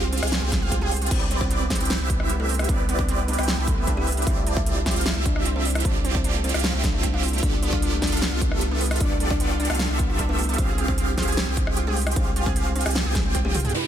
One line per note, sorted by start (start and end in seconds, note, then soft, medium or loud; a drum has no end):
0.00 0.21 C2 loud
0.00 0.20 C4 medium
0.00 0.07 C4 medium
0.00 0.20 F4 medium
0.00 0.20 G4 medium
0.00 0.20 G#4 medium
0.00 0.20 F5 medium
0.12 0.15 C4 medium
0.12 0.25 C4 medium
0.12 0.25 C5 medium
0.12 closed hi-hat soft
0.18 closed hi-hat medium
0.23 0.40 C2 loud
0.23 0.40 C4 medium
0.23 0.40 F4 medium
0.23 0.40 G4 medium
0.23 0.40 G#4 medium
0.23 0.27 F5 medium
0.23 0.40 G#5 medium
0.23 cross-stick medium
0.23 closed hi-hat soft
0.27 closed hi-hat medium
0.32 0.44 B3 medium
0.32 0.37 F4 loud
0.32 0.44 B4 medium
0.32 snare loud
0.32 closed hi-hat medium
0.42 1.09 C2 loud
0.42 0.47 C4 medium
0.42 1.09 C4 medium
0.42 1.09 F4 medium
0.42 1.09 G4 medium
0.42 1.09 G#4 medium
0.42 1.09 G5 medium
0.52 0.70 G#3 medium
0.52 0.59 G#4 loud
0.52 0.70 G#4 medium
0.52 kick loud
0.52 snare medium
0.52 closed hi-hat medium
0.62 0.67 F5 loud
0.72 0.76 F4 medium
0.72 kick medium
0.72 closed hi-hat medium
0.81 1.00 G3 medium
0.81 1.00 G4 medium
0.81 0.89 G#4 medium
0.91 0.96 C5 medium
0.91 open hi-hat loud
0.96 closed hi-hat medium
1.02 1.04 F4 medium
1.02 closed hi-hat soft
1.06 closed hi-hat medium
1.11 1.78 C2 loud
1.11 1.14 B3 medium
1.11 1.29 C4 medium
1.11 1.78 C4 medium
1.11 1.78 E4 medium
1.11 1.78 G4 medium
1.11 1.78 B4 medium
1.11 1.29 C5 loud
1.11 1.78 D5 medium
1.11 kick loud
1.11 closed hi-hat medium
1.11 crash medium
1.21 1.24 D4 medium
1.31 1.36 C4 loud
1.31 closed hi-hat medium
1.41 1.45 B3 medium
1.41 1.59 C4 medium
1.41 1.59 C5 medium
1.41 kick loud
1.51 1.58 D4 medium
1.51 closed hi-hat medium
1.61 1.65 B3 medium
1.70 1.73 B3 medium
1.70 1.83 C4 medium
1.70 1.83 C5 medium
1.70 kick medium
1.70 snare medium
1.70 closed hi-hat medium
1.75 closed hi-hat medium
1.80 1.98 C2 loud
1.80 1.98 C4 medium
1.80 1.83 D4 medium
1.80 1.98 E4 medium
1.80 1.98 G4 medium
1.80 1.98 B4 medium
1.80 1.98 G5 medium
1.80 closed hi-hat medium
1.85 closed hi-hat medium
1.90 1.95 C4 loud
1.90 2.02 C4 medium
1.90 2.02 C5 medium
1.90 snare loud
1.90 closed hi-hat medium
2.00 2.67 C2 loud
2.00 2.05 B3 medium
2.00 2.67 C4 medium
2.00 2.67 E4 medium
2.00 2.67 G4 medium
2.00 2.67 B4 medium
2.00 2.67 E5 medium
2.10 2.28 B3 medium
2.10 2.17 D4 medium
2.10 2.28 B4 medium
2.10 kick loud
2.10 closed hi-hat medium
2.20 2.25 B3 medium
2.20 cross-stick medium
2.29 2.33 B3 medium
2.29 closed hi-hat medium
2.40 2.58 A3 medium
2.40 2.42 D4 medium
2.40 2.58 A4 medium
2.49 2.54 C4 loud
2.49 open hi-hat loud
2.54 closed hi-hat medium
2.59 2.64 B3 medium
2.59 cross-stick medium
2.59 closed hi-hat medium
2.64 closed hi-hat medium
2.69 3.36 C2 loud
2.69 2.87 B3 medium
2.69 3.36 C4 medium
2.69 2.76 D4 medium
2.69 3.36 E4 medium
2.69 3.36 G4 medium
2.69 3.36 B4 medium
2.69 2.87 B4 loud
2.69 3.36 D5 loud
2.69 kick loud
2.69 closed hi-hat medium
2.79 2.84 B3 medium
2.89 2.92 B3 medium
2.89 closed hi-hat medium
2.99 3.17 B3 medium
2.99 3.02 D4 medium
2.99 3.17 B4 loud
2.99 kick loud
3.09 3.13 C4 loud
3.09 closed hi-hat medium
3.19 3.23 B3 medium
3.28 3.40 B3 medium
3.28 3.35 D4 medium
3.28 3.40 B4 medium
3.28 closed hi-hat medium
3.33 closed hi-hat medium
3.38 3.56 C2 loud
3.38 3.43 B3 medium
3.38 3.56 C4 medium
3.38 3.56 E4 medium
3.38 3.56 G4 medium
3.38 3.56 B4 medium
3.38 3.56 G5 medium
3.38 cross-stick medium
3.38 closed hi-hat medium
3.43 closed hi-hat medium
3.48 3.60 B3 medium
3.48 3.51 B3 medium
3.48 3.60 B4 medium
3.48 snare loud
3.58 4.25 C2 loud
3.58 4.25 C4 medium
3.58 3.61 D4 medium
3.58 4.25 E4 medium
3.58 4.25 G4 medium
3.58 4.25 B4 medium
3.58 4.25 E5 loud
3.67 3.86 A3 medium
3.67 3.72 C4 loud
3.67 3.86 A4 loud
3.67 kick loud
3.67 closed hi-hat medium
3.78 3.82 B3 medium
3.87 3.95 D4 medium
3.87 kick medium
3.87 closed hi-hat medium
3.97 4.15 G3 medium
3.97 4.02 B3 medium
3.97 4.15 G4 loud
4.07 4.10 B3 medium
4.07 open hi-hat medium
4.12 closed hi-hat medium
4.17 4.20 D4 medium
4.17 closed hi-hat medium
4.22 closed hi-hat medium
4.27 4.94 C2 loud
4.27 4.32 C4 loud
4.27 4.94 C4 medium
4.27 4.45 E4 medium
4.27 4.94 E4 medium
4.27 4.94 F4 medium
4.27 4.94 G4 medium
4.27 4.94 D5 medium
4.27 4.45 E5 loud
4.27 kick loud
4.27 closed hi-hat medium
4.37 4.42 A3 medium
4.47 4.54 D4 medium
4.47 closed hi-hat medium
4.57 4.61 A3 medium
4.57 4.75 E4 medium
4.57 4.75 E5 loud
4.57 kick loud
4.66 4.69 A3 medium
4.66 closed hi-hat medium
4.77 4.79 D4 medium
4.86 4.91 C4 loud
4.86 4.98 E4 medium
4.86 4.98 E5 medium
4.86 kick medium
4.86 snare medium
4.86 closed hi-hat medium
4.91 closed hi-hat medium
4.96 5.14 C2 loud
4.96 5.01 A3 medium
4.96 5.14 C4 medium
4.96 5.14 E4 medium
4.96 5.14 F4 medium
4.96 5.14 G4 medium
4.96 5.14 F5 medium
4.96 closed hi-hat medium
5.01 closed hi-hat medium
5.06 5.13 D4 medium
5.06 5.18 E4 medium
5.06 5.18 E5 medium
5.06 snare loud
5.16 5.83 C2 loud
5.16 5.21 A3 medium
5.16 5.83 C4 medium
5.16 5.83 E4 medium
5.16 5.83 F4 medium
5.16 5.83 G4 medium
5.16 5.83 E5 loud
5.26 5.29 A3 medium
5.26 5.44 D4 medium
5.26 5.44 D5 medium
5.26 kick loud
5.26 closed hi-hat medium
5.36 5.39 D4 medium
5.36 cross-stick medium
5.46 5.50 C4 loud
5.46 closed hi-hat medium
5.56 5.60 A3 medium
5.56 5.74 C4 medium
5.56 5.74 C5 medium
5.65 5.72 D4 medium
5.65 open hi-hat medium
5.70 closed hi-hat medium
5.75 5.80 A3 medium
5.75 cross-stick medium
5.75 closed hi-hat medium
5.80 closed hi-hat medium
5.85 6.52 C2 medium
5.85 5.88 A3 medium
5.85 6.52 C4 medium
5.85 6.03 C4 medium
5.85 6.52 E4 medium
5.85 6.52 F4 medium
5.85 6.52 G4 medium
5.85 6.03 C5 loud
5.85 6.52 D5 loud
5.85 kick loud
5.85 closed hi-hat medium
5.95 5.98 D4 medium
6.05 6.09 C4 loud
6.05 closed hi-hat medium
6.15 6.19 A3 medium
6.15 6.33 C4 medium
6.15 6.33 C5 medium
6.15 kick loud
6.24 6.32 D4 medium
6.24 closed hi-hat medium
6.35 6.39 A3 medium
6.44 6.47 A3 medium
6.44 6.56 C4 medium
6.44 6.56 C5 medium
6.44 closed hi-hat soft
6.49 closed hi-hat medium
6.54 6.72 C2 medium
6.54 6.72 C4 medium
6.54 6.57 D4 medium
6.54 6.72 E4 medium
6.54 6.72 F4 medium
6.54 6.72 G4 medium
6.54 6.72 F5 medium
6.54 cross-stick medium
6.54 closed hi-hat soft
6.59 closed hi-hat medium
6.64 6.69 C4 loud
6.64 6.76 C4 medium
6.64 6.76 C5 medium
6.64 snare loud
6.64 closed hi-hat medium
6.74 7.41 C2 loud
6.74 6.78 A3 medium
6.74 7.41 C4 medium
6.74 7.41 E4 medium
6.74 7.41 F4 medium
6.74 7.41 G4 medium
6.74 7.41 E5 medium
6.83 6.91 D4 medium
6.83 7.02 D4 medium
6.83 7.02 D5 medium
6.83 kick loud
6.83 snare medium
6.83 closed hi-hat medium
6.93 6.98 A3 medium
7.03 7.06 A3 medium
7.03 kick medium
7.03 closed hi-hat medium
7.13 7.16 D4 medium
7.13 7.31 F4 medium
7.13 7.31 F5 medium
7.23 7.28 C4 loud
7.23 open hi-hat medium
7.28 closed hi-hat medium
7.33 7.38 A3 medium
7.33 closed hi-hat soft
7.38 closed hi-hat medium
7.43 8.10 C2 loud
7.43 7.46 A3 medium
7.43 8.10 B3 medium
7.43 7.61 D4 medium
7.43 8.10 F4 medium
7.43 8.10 G4 medium
7.43 8.10 A4 medium
7.43 8.10 D5 loud
7.43 7.61 D5 loud
7.43 kick loud
7.43 closed hi-hat medium
7.53 7.56 D4 medium
7.62 7.67 B3 loud
7.62 closed hi-hat medium
7.73 7.90 D4 medium
7.73 7.79 F4 loud
7.73 7.90 D5 medium
7.73 kick loud
7.82 7.89 D4 medium
7.82 closed hi-hat medium
7.92 7.97 A3 medium
8.02 8.05 A3 medium
8.02 8.14 D4 medium
8.02 8.14 D5 medium
8.02 kick medium
8.02 snare medium
8.02 closed hi-hat soft
8.07 closed hi-hat medium
8.12 8.30 C2 medium
8.12 8.29 B3 medium
8.12 8.15 D4 medium
8.12 8.29 F4 medium
8.12 8.29 G4 medium
8.12 8.29 A4 medium
8.12 8.29 F5 medium
8.12 closed hi-hat soft
8.17 closed hi-hat medium
8.22 8.27 B3 loud
8.22 8.34 D4 medium
8.22 8.34 D5 loud
8.22 snare loud
8.22 closed hi-hat medium
8.32 8.99 C2 loud
8.32 8.98 B3 medium
8.32 8.98 F4 medium
8.32 8.39 F4 loud
8.32 8.98 G4 medium
8.32 8.98 A4 medium
8.32 8.98 E5 medium
8.41 8.60 B3 medium
8.41 8.49 D4 medium
8.41 8.60 B4 loud
8.41 kick loud
8.41 closed hi-hat medium
8.51 8.56 A3 medium
8.51 cross-stick medium
8.61 8.64 A3 medium
8.61 closed hi-hat medium
8.71 8.89 B3 medium
8.71 8.74 D4 medium
8.71 8.89 B4 loud
8.81 8.86 B3 loud
8.81 open hi-hat medium
8.86 closed hi-hat medium
8.91 8.98 F4 loud
8.91 cross-stick medium
8.91 closed hi-hat soft
8.96 closed hi-hat medium
9.00 9.68 C2 medium
9.00 9.68 B3 medium
9.00 9.19 D4 medium
9.00 9.08 D4 medium
9.00 9.68 F4 medium
9.00 9.68 G4 medium
9.00 9.68 A4 medium
9.00 9.19 D5 loud
9.00 9.68 D5 loud
9.00 kick loud
9.00 closed hi-hat medium
9.11 9.15 A3 medium
9.20 9.23 A3 medium
9.20 closed hi-hat medium
9.30 9.48 D4 medium
9.30 9.33 D4 medium
9.30 9.48 D5 medium
9.30 kick loud
9.40 9.45 B3 loud
9.40 closed hi-hat medium
9.51 9.57 F4 loud
9.60 9.72 D4 medium
9.60 9.67 D4 medium
9.60 9.72 D5 medium
9.60 closed hi-hat soft
9.65 closed hi-hat medium
9.70 9.88 C2 loud
9.70 9.75 A3 medium
9.70 9.87 B3 medium
9.70 9.87 F4 medium
9.70 9.87 G4 medium
9.70 9.87 A4 medium
9.70 9.87 F5 medium
9.70 cross-stick medium
9.70 closed hi-hat soft
9.75 closed hi-hat medium
9.79 9.83 A3 medium
9.79 9.92 D4 medium
9.79 9.92 D5 medium
9.79 snare loud
9.90 10.57 C2 loud
9.90 10.56 B3 medium
9.90 9.93 D4 medium
9.90 10.56 F4 medium
9.90 10.56 G4 medium
9.90 10.56 A4 medium
9.90 10.56 E5 medium
9.99 10.17 B3 medium
9.99 10.04 B3 loud
9.99 10.17 B4 medium
9.99 kick loud
9.99 closed hi-hat medium
10.10 10.16 F4 loud
10.19 10.26 D4 medium
10.19 kick medium
10.19 closed hi-hat medium
10.29 10.34 A3 medium
10.29 10.47 B3 medium
10.29 10.47 B4 loud
10.39 10.42 A3 medium
10.39 open hi-hat medium
10.44 closed hi-hat medium
10.49 10.52 D4 medium
10.49 closed hi-hat soft
10.54 closed hi-hat medium
10.58 11.26 C2 loud
10.58 10.76 C4 medium
10.58 11.26 C4 medium
10.58 11.26 F4 medium
10.58 10.63 F4 loud
10.58 11.26 G4 medium
10.58 11.26 G#4 medium
10.58 10.76 C5 loud
10.58 11.26 F5 medium
10.58 kick loud
10.58 closed hi-hat medium
10.69 10.75 G#4 loud
10.78 10.85 G4 medium
10.78 closed hi-hat medium
10.88 10.93 C4 medium
10.88 11.06 C4 medium
10.88 11.06 C5 loud
10.88 kick loud
10.98 11.01 C4 medium
10.98 closed hi-hat medium
11.08 11.11 G4 medium
11.18 11.30 C4 medium
11.18 11.22 F4 loud
11.18 11.30 C5 medium
11.18 kick medium
11.18 snare medium
11.18 closed hi-hat soft
11.23 closed hi-hat medium
11.28 11.46 C2 loud
11.28 11.45 C4 medium
11.28 11.45 F4 medium
11.28 11.45 G4 medium
11.28 11.35 G#4 loud
11.28 11.45 G#4 medium
11.28 11.45 G#5 medium
11.28 closed hi-hat soft
11.32 closed hi-hat medium
11.37 11.50 C4 medium
11.37 11.44 G4 medium
11.37 11.50 C5 loud
11.37 snare loud
11.37 closed hi-hat medium
11.48 12.15 C2 loud
11.48 11.52 C4 medium
11.48 12.14 C4 medium
11.48 12.14 F4 medium
11.48 12.14 G4 medium
11.48 12.14 G#4 medium
11.48 12.14 G5 medium
11.57 11.75 C4 medium
11.57 11.60 C4 medium
11.57 11.75 C5 loud
11.57 kick loud
11.57 closed hi-hat medium
11.67 11.70 G4 medium
11.67 cross-stick medium
11.77 11.82 F4 loud
11.77 closed hi-hat medium
11.87 12.05 G#3 medium
11.87 12.05 G#4 loud
11.87 11.94 G#4 loud
11.97 12.04 G4 medium
11.97 open hi-hat loud
12.02 closed hi-hat medium
12.07 12.11 C4 medium
12.07 cross-stick medium
12.07 closed hi-hat soft
12.11 closed hi-hat medium
12.16 12.84 C2 loud
12.16 12.83 C4 medium
12.16 12.34 C4 medium
12.16 12.19 C4 medium
12.16 12.83 F4 medium
12.16 12.83 G4 medium
12.16 12.83 G#4 medium
12.16 12.34 C5 loud
12.16 12.83 F5 medium
12.16 kick loud
12.16 closed hi-hat medium
12.27 12.29 G4 medium
12.36 12.41 F4 loud
12.36 closed hi-hat medium
12.46 12.64 C4 medium
12.46 12.53 G#4 loud
12.46 12.64 C5 medium
12.46 kick loud
12.56 12.63 G4 medium
12.56 closed hi-hat medium
12.66 12.71 C4 medium
12.76 12.88 C4 medium
12.76 12.79 C4 medium
12.76 12.88 C5 medium
12.76 closed hi-hat soft
12.81 closed hi-hat medium
12.86 13.04 C2 loud
12.86 13.03 C4 medium
12.86 13.03 F4 medium
12.86 13.03 G4 medium
12.86 12.89 G4 medium
12.86 13.03 G#4 medium
12.86 13.03 G#5 medium
12.86 cross-stick medium
12.86 closed hi-hat medium
12.91 closed hi-hat medium
12.95 13.08 B3 medium
12.95 13.00 F4 loud
12.95 13.08 B4 medium
12.95 snare loud
12.95 closed hi-hat medium
13.06 13.72 C2 loud
13.06 13.72 C4 medium
13.06 13.72 F4 medium
13.06 13.72 G4 medium
13.06 13.12 G#4 loud
13.06 13.72 G#4 medium
13.06 13.72 G5 loud
13.15 13.33 G#3 medium
13.15 13.22 G4 medium
13.15 13.33 G#4 medium
13.15 kick loud
13.15 snare medium
13.15 closed hi-hat medium
13.26 13.30 C4 medium
13.35 13.38 C4 medium
13.35 kick medium
13.35 closed hi-hat medium
13.45 13.63 G3 medium
13.45 13.63 G4 medium
13.45 13.48 G4 medium
13.45 high tom medium
13.55 13.59 F4 loud
13.55 open hi-hat loud
13.55 mid tom medium
13.60 closed hi-hat medium
13.65 13.72 G#4 loud
13.65 closed hi-hat medium
13.65 mid tom medium
13.69 13.87 C3 medium
13.69 13.87 C4 medium
13.69 closed hi-hat medium
13.74 13.77 B3 medium
13.74 13.87 C4 medium
13.74 13.87 D4 medium
13.74 13.87 E4 medium
13.74 13.87 G4 medium
13.74 13.87 B4 medium
13.74 13.87 D5 medium
13.74 downlifter medium